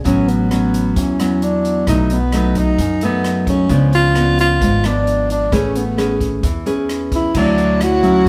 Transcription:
0.04 0.92 A1 medium
0.04 0.94 A2 soft
0.04 0.47 F#3 medium
0.04 0.47 B3 medium
0.04 0.48 C#4 medium
0.04 0.30 C#4 medium
0.04 kick soft
0.04 closed hi-hat soft
0.28 1.00 B3 medium
0.28 closed hi-hat soft
0.51 1.16 F#3 soft
0.51 1.16 B3 soft
0.51 1.16 C#4 medium
0.51 cross-stick soft
0.51 closed hi-hat soft
0.74 closed hi-hat soft
0.96 1.83 E2 medium
0.96 1.85 E3 medium
0.96 1.45 C#4 medium
0.96 kick medium
0.96 closed hi-hat soft
1.19 1.84 F#3 medium
1.19 1.84 B3 medium
1.19 cross-stick medium
1.19 closed hi-hat soft
1.42 1.88 D4 medium
1.42 closed hi-hat soft
1.65 closed hi-hat soft
1.87 2.75 B1 medium
1.87 2.77 B2 medium
1.87 2.17 F#3 medium
1.87 2.17 A3 soft
1.87 2.15 D#4 medium
1.87 2.18 D#4 medium
1.87 kick soft
1.87 cross-stick medium
1.87 closed hi-hat medium
2.10 2.35 B3 medium
2.10 closed hi-hat soft
2.32 2.78 F#3 soft
2.32 2.79 A3 soft
2.32 2.60 B3 medium
2.32 2.79 D#4 medium
2.32 cross-stick soft
2.32 closed hi-hat soft
2.55 3.03 D#4 medium
2.55 kick soft
2.55 closed hi-hat soft
2.78 3.66 F#2 medium
2.78 3.68 F#2 medium
2.78 kick medium
2.78 closed hi-hat medium
3.01 3.67 F#3 medium
3.01 3.67 A3 medium
3.01 3.46 B3 medium
3.01 3.67 D#4 medium
3.01 closed hi-hat soft
3.24 cross-stick medium
3.24 closed hi-hat soft
3.47 3.91 C#4 medium
3.47 kick medium
3.47 closed hi-hat soft
3.69 4.57 C#2 loud
3.69 4.59 C#3 medium
3.69 4.12 F3 medium
3.69 4.12 B3 medium
3.69 4.12 D4 medium
3.69 kick soft
3.69 closed hi-hat soft
3.93 4.36 F4 loud
3.93 closed hi-hat soft
4.15 4.80 F3 soft
4.15 4.81 B3 medium
4.15 4.81 D4 soft
4.15 cross-stick medium
4.15 closed hi-hat soft
4.38 4.87 F4 medium
4.38 closed hi-hat soft
4.61 5.48 G#1 medium
4.61 5.50 G#2 medium
4.61 kick medium
4.61 closed hi-hat medium
4.84 5.49 F3 medium
4.84 5.49 B3 medium
4.84 5.50 D4 medium
4.84 5.31 D4 medium
4.84 cross-stick medium
4.84 closed hi-hat soft
5.07 closed hi-hat soft
5.30 5.52 D4 medium
5.30 closed hi-hat soft
5.52 6.39 A1 medium
5.52 6.41 A3 medium
5.52 5.81 C#4 soft
5.52 5.78 C#4 medium
5.52 5.82 G#4 medium
5.52 5.82 B4 medium
5.52 kick medium
5.52 cross-stick soft
5.52 closed hi-hat soft
5.75 6.22 B3 medium
5.75 closed hi-hat soft
5.98 6.43 C#4 soft
5.98 6.43 G#4 medium
5.98 6.44 B4 soft
5.98 cross-stick soft
5.98 closed hi-hat soft
6.21 kick soft
6.21 closed hi-hat soft
6.43 7.31 E2 medium
6.43 7.33 E3 medium
6.43 kick medium
6.43 closed hi-hat medium
6.66 7.31 C#4 medium
6.66 7.31 G#4 medium
6.66 7.31 B4 medium
6.66 closed hi-hat soft
6.89 cross-stick soft
6.89 closed hi-hat soft
7.12 7.39 E4 medium
7.12 kick medium
7.12 closed hi-hat soft
7.34 8.22 D2 medium
7.34 8.24 D3 medium
7.34 7.80 F#3 medium
7.34 7.84 D4 medium
7.34 8.29 E4 medium
7.34 7.81 E4 medium
7.34 8.29 C#5 medium
7.34 8.29 F#5 medium
7.34 kick medium
7.34 crash medium
7.58 closed hi-hat soft
7.81 8.29 F#4 medium
7.81 cross-stick medium
7.81 closed hi-hat soft
8.03 8.29 F#3 medium
8.03 8.29 C#4 medium
8.03 8.29 E4 medium
8.03 kick soft
8.03 closed hi-hat soft

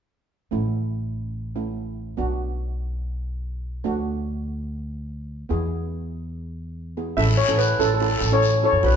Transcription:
0.51 2.15 A1 medium
0.51 1.54 A3 medium
0.51 1.54 C#4 soft
0.51 1.54 E4 medium
1.56 2.18 A3 soft
1.56 2.18 C#4 soft
1.56 2.18 E4 medium
2.17 3.82 B1 medium
2.17 3.81 B3 medium
2.17 3.81 D4 medium
2.17 3.81 F#4 medium
3.84 5.48 D2 medium
3.84 5.47 A3 medium
3.84 5.48 D4 medium
3.84 5.48 F#4 medium
5.49 7.14 E2 medium
5.49 6.93 B3 medium
5.49 6.93 E4 medium
5.49 6.93 G#4 medium
6.97 7.18 B3 soft
6.97 7.16 E4 soft
6.97 7.18 G#4 soft
7.17 7.41 A1 medium
7.17 7.36 C#4 medium
7.17 7.36 E4 medium
7.17 7.36 A4 medium
7.17 7.38 E5 medium
7.17 long guiro medium
7.37 7.59 C#5 medium
7.48 7.72 A1 medium
7.48 7.67 C#4 medium
7.48 7.67 E4 medium
7.48 7.67 A4 medium
7.58 7.78 B4 medium
7.58 short guiro medium
7.79 8.11 A1 medium
7.79 7.93 C#4 medium
7.79 7.93 E4 medium
7.79 7.87 A4 medium
7.79 7.93 A4 medium
7.79 short guiro medium
7.88 7.93 A4 medium
7.94 8.01 A4 medium
8.00 8.19 C#4 medium
8.00 8.19 E4 medium
8.00 8.19 A4 medium
8.00 8.08 A4 medium
8.00 long guiro medium
8.09 8.17 A4 medium
8.19 8.61 A1 medium
8.19 8.26 A4 medium
8.19 short guiro medium
8.32 8.50 C#4 medium
8.32 8.51 E4 medium
8.32 8.51 A4 medium
8.32 8.64 C#5 medium
8.42 short guiro medium
8.63 8.75 C#4 medium
8.63 8.75 E4 medium
8.63 8.76 A4 medium
8.63 8.85 C#5 medium
8.73 8.81 F#2 medium
8.83 8.96 B1 medium
8.83 8.96 D4 medium
8.83 8.96 F#4 medium
8.83 8.96 B4 medium
8.83 8.95 B4 medium
8.83 long guiro medium

